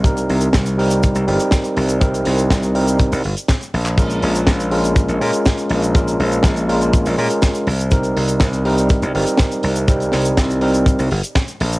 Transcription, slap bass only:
X:1
M:4/4
L:1/16
Q:1/4=122
K:Cphr
V:1 name="Slap bass" clef=bass
C,,2 C,, z C,,4- C,, C,, G,,, z3 C,,2- | C,,2 C,, z C,,4- C,, C,, G,,, z3 B,,,2- | B,,,2 B,,, z B,,,4- B,,, B,,, B,, z3 B,,,2- | B,,,2 B,,, z B,,,4- B,,, B,,, B,, z3 C,,2- |
C,,2 C,, z C,,4- C,, C,, G,,, z3 C,,2- | C,,2 C,, z C,,4- C,, C,, G,,, z3 B,,,2 |]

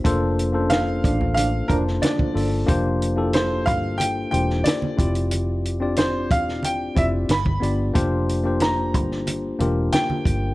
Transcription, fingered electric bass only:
X:1
M:4/4
L:1/8
Q:1/4=91
K:Cmix
V:1 name="Fingered electric bass" clef=bass
F,,,3 A,,,2 F,,, z G,,, | F,,,3 G,,,2 E,,, z F,,,- | F,,,3 E,,,2 F,,, G,,, G,,, | F,,,3 G,,,2 E,,, z G,,, |]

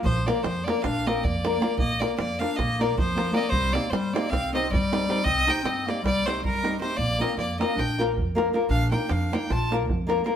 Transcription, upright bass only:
X:1
M:9/8
L:1/8
Q:3/8=104
K:Bb
V:1 name="Upright bass" clef=bass
B,,,2 F,,2 B,,,2 F,,3 | B,,,2 F,,2 B,,,2 F,,3 | C,,2 G,,2 C,,2 G,,3 | C,,2 G,,2 C,,2 G,,3 |
B,,,2 F,,2 B,,,2 F,,3 | B,,,2 F,,2 B,,,2 F,,3 |]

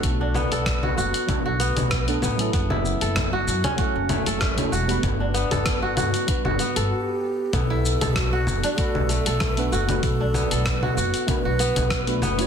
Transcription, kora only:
X:1
M:4/4
L:1/16
Q:"Swing 16ths" 1/4=96
K:Bm
V:1 name="Kora"
z D B, A z F F z2 F B, z3 B, z | B, E z A z F z C F z A, A A,2 F z | z D B, A z F F z2 F B, A z4 | B, E z A z F z D F z A, A A,2 F z |
z D B, A z F F z2 F B, z3 B, z |]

